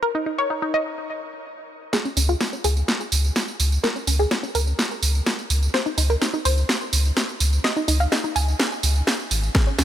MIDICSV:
0, 0, Header, 1, 4, 480
1, 0, Start_track
1, 0, Tempo, 476190
1, 26, Time_signature, 4, 2, 24, 8
1, 9919, End_track
2, 0, Start_track
2, 0, Title_t, "Synth arpeggio sound"
2, 0, Program_c, 0, 84
2, 26, Note_on_c, 0, 70, 94
2, 123, Note_off_c, 0, 70, 0
2, 149, Note_on_c, 0, 63, 62
2, 242, Note_off_c, 0, 63, 0
2, 265, Note_on_c, 0, 63, 60
2, 363, Note_off_c, 0, 63, 0
2, 388, Note_on_c, 0, 73, 91
2, 482, Note_off_c, 0, 73, 0
2, 506, Note_on_c, 0, 63, 62
2, 603, Note_off_c, 0, 63, 0
2, 627, Note_on_c, 0, 63, 65
2, 721, Note_off_c, 0, 63, 0
2, 745, Note_on_c, 0, 75, 91
2, 1851, Note_off_c, 0, 75, 0
2, 1945, Note_on_c, 0, 68, 98
2, 2043, Note_off_c, 0, 68, 0
2, 2069, Note_on_c, 0, 61, 62
2, 2162, Note_off_c, 0, 61, 0
2, 2187, Note_on_c, 0, 61, 60
2, 2284, Note_off_c, 0, 61, 0
2, 2308, Note_on_c, 0, 65, 92
2, 2402, Note_off_c, 0, 65, 0
2, 2427, Note_on_c, 0, 61, 61
2, 2523, Note_off_c, 0, 61, 0
2, 2549, Note_on_c, 0, 61, 62
2, 2642, Note_off_c, 0, 61, 0
2, 2666, Note_on_c, 0, 68, 94
2, 3772, Note_off_c, 0, 68, 0
2, 3866, Note_on_c, 0, 70, 98
2, 3963, Note_off_c, 0, 70, 0
2, 3988, Note_on_c, 0, 61, 65
2, 4082, Note_off_c, 0, 61, 0
2, 4106, Note_on_c, 0, 61, 62
2, 4203, Note_off_c, 0, 61, 0
2, 4228, Note_on_c, 0, 68, 92
2, 4322, Note_off_c, 0, 68, 0
2, 4346, Note_on_c, 0, 61, 63
2, 4443, Note_off_c, 0, 61, 0
2, 4467, Note_on_c, 0, 61, 64
2, 4562, Note_off_c, 0, 61, 0
2, 4586, Note_on_c, 0, 70, 92
2, 5692, Note_off_c, 0, 70, 0
2, 5785, Note_on_c, 0, 72, 99
2, 5882, Note_off_c, 0, 72, 0
2, 5907, Note_on_c, 0, 63, 65
2, 6001, Note_off_c, 0, 63, 0
2, 6024, Note_on_c, 0, 63, 62
2, 6122, Note_off_c, 0, 63, 0
2, 6148, Note_on_c, 0, 70, 93
2, 6242, Note_off_c, 0, 70, 0
2, 6264, Note_on_c, 0, 63, 63
2, 6362, Note_off_c, 0, 63, 0
2, 6387, Note_on_c, 0, 63, 66
2, 6481, Note_off_c, 0, 63, 0
2, 6504, Note_on_c, 0, 72, 93
2, 7611, Note_off_c, 0, 72, 0
2, 7704, Note_on_c, 0, 75, 99
2, 7802, Note_off_c, 0, 75, 0
2, 7827, Note_on_c, 0, 63, 64
2, 7921, Note_off_c, 0, 63, 0
2, 7944, Note_on_c, 0, 63, 62
2, 8042, Note_off_c, 0, 63, 0
2, 8067, Note_on_c, 0, 77, 92
2, 8161, Note_off_c, 0, 77, 0
2, 8185, Note_on_c, 0, 63, 62
2, 8283, Note_off_c, 0, 63, 0
2, 8307, Note_on_c, 0, 63, 65
2, 8401, Note_off_c, 0, 63, 0
2, 8424, Note_on_c, 0, 80, 93
2, 9530, Note_off_c, 0, 80, 0
2, 9624, Note_on_c, 0, 68, 98
2, 9722, Note_off_c, 0, 68, 0
2, 9746, Note_on_c, 0, 61, 64
2, 9841, Note_off_c, 0, 61, 0
2, 9864, Note_on_c, 0, 61, 63
2, 9919, Note_off_c, 0, 61, 0
2, 9919, End_track
3, 0, Start_track
3, 0, Title_t, "Sub bass"
3, 0, Program_c, 1, 38
3, 2185, Note_on_c, 1, 37, 99
3, 2370, Note_off_c, 1, 37, 0
3, 2665, Note_on_c, 1, 37, 99
3, 2850, Note_off_c, 1, 37, 0
3, 3147, Note_on_c, 1, 37, 81
3, 3331, Note_off_c, 1, 37, 0
3, 3626, Note_on_c, 1, 37, 80
3, 3811, Note_off_c, 1, 37, 0
3, 4105, Note_on_c, 1, 37, 97
3, 4290, Note_off_c, 1, 37, 0
3, 4585, Note_on_c, 1, 37, 97
3, 4770, Note_off_c, 1, 37, 0
3, 5065, Note_on_c, 1, 37, 81
3, 5250, Note_off_c, 1, 37, 0
3, 5545, Note_on_c, 1, 37, 84
3, 5730, Note_off_c, 1, 37, 0
3, 6023, Note_on_c, 1, 37, 99
3, 6209, Note_off_c, 1, 37, 0
3, 6505, Note_on_c, 1, 37, 100
3, 6690, Note_off_c, 1, 37, 0
3, 6984, Note_on_c, 1, 37, 85
3, 7169, Note_off_c, 1, 37, 0
3, 7464, Note_on_c, 1, 37, 83
3, 7649, Note_off_c, 1, 37, 0
3, 7944, Note_on_c, 1, 37, 99
3, 8129, Note_off_c, 1, 37, 0
3, 8424, Note_on_c, 1, 37, 98
3, 8609, Note_off_c, 1, 37, 0
3, 8905, Note_on_c, 1, 37, 101
3, 9090, Note_off_c, 1, 37, 0
3, 9384, Note_on_c, 1, 32, 97
3, 9570, Note_off_c, 1, 32, 0
3, 9864, Note_on_c, 1, 37, 100
3, 9919, Note_off_c, 1, 37, 0
3, 9919, End_track
4, 0, Start_track
4, 0, Title_t, "Drums"
4, 1945, Note_on_c, 9, 38, 47
4, 1947, Note_on_c, 9, 54, 45
4, 2046, Note_off_c, 9, 38, 0
4, 2048, Note_off_c, 9, 54, 0
4, 2070, Note_on_c, 9, 54, 22
4, 2171, Note_off_c, 9, 54, 0
4, 2186, Note_on_c, 9, 46, 102
4, 2188, Note_on_c, 9, 54, 80
4, 2286, Note_off_c, 9, 46, 0
4, 2289, Note_off_c, 9, 54, 0
4, 2311, Note_on_c, 9, 54, 34
4, 2412, Note_off_c, 9, 54, 0
4, 2425, Note_on_c, 9, 38, 48
4, 2428, Note_on_c, 9, 54, 45
4, 2526, Note_off_c, 9, 38, 0
4, 2528, Note_off_c, 9, 54, 0
4, 2549, Note_on_c, 9, 54, 22
4, 2650, Note_off_c, 9, 54, 0
4, 2665, Note_on_c, 9, 46, 104
4, 2667, Note_on_c, 9, 54, 79
4, 2766, Note_off_c, 9, 46, 0
4, 2768, Note_off_c, 9, 54, 0
4, 2790, Note_on_c, 9, 54, 35
4, 2891, Note_off_c, 9, 54, 0
4, 2905, Note_on_c, 9, 38, 51
4, 2908, Note_on_c, 9, 54, 46
4, 3006, Note_off_c, 9, 38, 0
4, 3009, Note_off_c, 9, 54, 0
4, 3030, Note_on_c, 9, 54, 22
4, 3131, Note_off_c, 9, 54, 0
4, 3145, Note_on_c, 9, 46, 101
4, 3148, Note_on_c, 9, 54, 77
4, 3246, Note_off_c, 9, 46, 0
4, 3249, Note_off_c, 9, 54, 0
4, 3271, Note_on_c, 9, 54, 34
4, 3371, Note_off_c, 9, 54, 0
4, 3386, Note_on_c, 9, 38, 49
4, 3389, Note_on_c, 9, 54, 44
4, 3487, Note_off_c, 9, 38, 0
4, 3490, Note_off_c, 9, 54, 0
4, 3510, Note_on_c, 9, 54, 23
4, 3611, Note_off_c, 9, 54, 0
4, 3626, Note_on_c, 9, 46, 101
4, 3629, Note_on_c, 9, 54, 81
4, 3727, Note_off_c, 9, 46, 0
4, 3729, Note_off_c, 9, 54, 0
4, 3752, Note_on_c, 9, 54, 36
4, 3853, Note_off_c, 9, 54, 0
4, 3867, Note_on_c, 9, 38, 52
4, 3870, Note_on_c, 9, 54, 44
4, 3968, Note_off_c, 9, 38, 0
4, 3970, Note_off_c, 9, 54, 0
4, 3991, Note_on_c, 9, 54, 22
4, 4092, Note_off_c, 9, 54, 0
4, 4106, Note_on_c, 9, 46, 103
4, 4109, Note_on_c, 9, 54, 77
4, 4207, Note_off_c, 9, 46, 0
4, 4210, Note_off_c, 9, 54, 0
4, 4231, Note_on_c, 9, 54, 32
4, 4332, Note_off_c, 9, 54, 0
4, 4346, Note_on_c, 9, 38, 54
4, 4349, Note_on_c, 9, 54, 44
4, 4447, Note_off_c, 9, 38, 0
4, 4450, Note_off_c, 9, 54, 0
4, 4471, Note_on_c, 9, 54, 23
4, 4572, Note_off_c, 9, 54, 0
4, 4586, Note_on_c, 9, 46, 109
4, 4589, Note_on_c, 9, 54, 75
4, 4687, Note_off_c, 9, 46, 0
4, 4689, Note_off_c, 9, 54, 0
4, 4711, Note_on_c, 9, 54, 34
4, 4812, Note_off_c, 9, 54, 0
4, 4826, Note_on_c, 9, 38, 56
4, 4829, Note_on_c, 9, 54, 45
4, 4927, Note_off_c, 9, 38, 0
4, 4929, Note_off_c, 9, 54, 0
4, 4952, Note_on_c, 9, 54, 22
4, 5053, Note_off_c, 9, 54, 0
4, 5066, Note_on_c, 9, 46, 108
4, 5069, Note_on_c, 9, 54, 77
4, 5167, Note_off_c, 9, 46, 0
4, 5169, Note_off_c, 9, 54, 0
4, 5192, Note_on_c, 9, 54, 33
4, 5293, Note_off_c, 9, 54, 0
4, 5307, Note_on_c, 9, 38, 57
4, 5310, Note_on_c, 9, 54, 44
4, 5408, Note_off_c, 9, 38, 0
4, 5410, Note_off_c, 9, 54, 0
4, 5431, Note_on_c, 9, 54, 22
4, 5531, Note_off_c, 9, 54, 0
4, 5545, Note_on_c, 9, 46, 107
4, 5548, Note_on_c, 9, 54, 79
4, 5646, Note_off_c, 9, 46, 0
4, 5649, Note_off_c, 9, 54, 0
4, 5671, Note_on_c, 9, 54, 35
4, 5772, Note_off_c, 9, 54, 0
4, 5786, Note_on_c, 9, 38, 59
4, 5789, Note_on_c, 9, 54, 42
4, 5887, Note_off_c, 9, 38, 0
4, 5889, Note_off_c, 9, 54, 0
4, 5911, Note_on_c, 9, 54, 22
4, 6012, Note_off_c, 9, 54, 0
4, 6025, Note_on_c, 9, 46, 109
4, 6028, Note_on_c, 9, 54, 76
4, 6126, Note_off_c, 9, 46, 0
4, 6129, Note_off_c, 9, 54, 0
4, 6151, Note_on_c, 9, 54, 32
4, 6252, Note_off_c, 9, 54, 0
4, 6266, Note_on_c, 9, 38, 58
4, 6268, Note_on_c, 9, 54, 43
4, 6367, Note_off_c, 9, 38, 0
4, 6369, Note_off_c, 9, 54, 0
4, 6390, Note_on_c, 9, 54, 22
4, 6490, Note_off_c, 9, 54, 0
4, 6505, Note_on_c, 9, 46, 107
4, 6508, Note_on_c, 9, 54, 75
4, 6606, Note_off_c, 9, 46, 0
4, 6608, Note_off_c, 9, 54, 0
4, 6629, Note_on_c, 9, 54, 33
4, 6730, Note_off_c, 9, 54, 0
4, 6745, Note_on_c, 9, 38, 63
4, 6747, Note_on_c, 9, 54, 44
4, 6845, Note_off_c, 9, 38, 0
4, 6848, Note_off_c, 9, 54, 0
4, 6869, Note_on_c, 9, 54, 22
4, 6970, Note_off_c, 9, 54, 0
4, 6984, Note_on_c, 9, 46, 112
4, 6987, Note_on_c, 9, 54, 75
4, 7085, Note_off_c, 9, 46, 0
4, 7087, Note_off_c, 9, 54, 0
4, 7109, Note_on_c, 9, 54, 33
4, 7210, Note_off_c, 9, 54, 0
4, 7224, Note_on_c, 9, 38, 64
4, 7227, Note_on_c, 9, 54, 43
4, 7325, Note_off_c, 9, 38, 0
4, 7328, Note_off_c, 9, 54, 0
4, 7348, Note_on_c, 9, 54, 21
4, 7449, Note_off_c, 9, 54, 0
4, 7463, Note_on_c, 9, 46, 111
4, 7466, Note_on_c, 9, 54, 76
4, 7564, Note_off_c, 9, 46, 0
4, 7567, Note_off_c, 9, 54, 0
4, 7589, Note_on_c, 9, 54, 34
4, 7689, Note_off_c, 9, 54, 0
4, 7704, Note_on_c, 9, 38, 67
4, 7706, Note_on_c, 9, 54, 42
4, 7804, Note_off_c, 9, 38, 0
4, 7807, Note_off_c, 9, 54, 0
4, 7829, Note_on_c, 9, 54, 21
4, 7930, Note_off_c, 9, 54, 0
4, 7945, Note_on_c, 9, 46, 107
4, 7947, Note_on_c, 9, 54, 71
4, 8046, Note_off_c, 9, 46, 0
4, 8048, Note_off_c, 9, 54, 0
4, 8069, Note_on_c, 9, 54, 31
4, 8170, Note_off_c, 9, 54, 0
4, 8185, Note_on_c, 9, 38, 67
4, 8187, Note_on_c, 9, 54, 44
4, 8285, Note_off_c, 9, 38, 0
4, 8288, Note_off_c, 9, 54, 0
4, 8310, Note_on_c, 9, 54, 21
4, 8411, Note_off_c, 9, 54, 0
4, 8425, Note_on_c, 9, 46, 109
4, 8428, Note_on_c, 9, 54, 73
4, 8526, Note_off_c, 9, 46, 0
4, 8529, Note_off_c, 9, 54, 0
4, 8550, Note_on_c, 9, 54, 33
4, 8651, Note_off_c, 9, 54, 0
4, 8664, Note_on_c, 9, 38, 71
4, 8667, Note_on_c, 9, 54, 43
4, 8765, Note_off_c, 9, 38, 0
4, 8768, Note_off_c, 9, 54, 0
4, 8789, Note_on_c, 9, 54, 21
4, 8890, Note_off_c, 9, 54, 0
4, 8904, Note_on_c, 9, 46, 108
4, 8906, Note_on_c, 9, 54, 75
4, 9004, Note_off_c, 9, 46, 0
4, 9007, Note_off_c, 9, 54, 0
4, 9028, Note_on_c, 9, 54, 32
4, 9129, Note_off_c, 9, 54, 0
4, 9144, Note_on_c, 9, 38, 72
4, 9147, Note_on_c, 9, 54, 43
4, 9245, Note_off_c, 9, 38, 0
4, 9248, Note_off_c, 9, 54, 0
4, 9270, Note_on_c, 9, 54, 21
4, 9371, Note_off_c, 9, 54, 0
4, 9385, Note_on_c, 9, 46, 108
4, 9387, Note_on_c, 9, 54, 72
4, 9486, Note_off_c, 9, 46, 0
4, 9488, Note_off_c, 9, 54, 0
4, 9509, Note_on_c, 9, 54, 34
4, 9610, Note_off_c, 9, 54, 0
4, 9624, Note_on_c, 9, 36, 116
4, 9624, Note_on_c, 9, 38, 75
4, 9627, Note_on_c, 9, 54, 43
4, 9725, Note_off_c, 9, 36, 0
4, 9725, Note_off_c, 9, 38, 0
4, 9728, Note_off_c, 9, 54, 0
4, 9750, Note_on_c, 9, 54, 21
4, 9850, Note_off_c, 9, 54, 0
4, 9864, Note_on_c, 9, 38, 73
4, 9864, Note_on_c, 9, 46, 107
4, 9867, Note_on_c, 9, 54, 74
4, 9919, Note_off_c, 9, 38, 0
4, 9919, Note_off_c, 9, 46, 0
4, 9919, Note_off_c, 9, 54, 0
4, 9919, End_track
0, 0, End_of_file